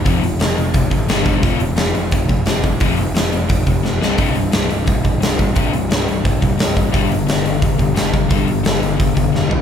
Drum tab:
HH |oooooooo|oooooooo|oooooo--|oooooooo|
SD |--o---o-|--o---o-|--o---oo|--o---o-|
FT |--------|--------|--------|--------|
BD |o---oo-o|o---oo-o|o---oo--|o---oo-o|

HH |oooooooo|oooooooo|oooooo--|
SD |--o---o-|--o---o-|--o---o-|
FT |--------|--------|-------o|
BD |o---oo-o|o---oo-o|o---oo--|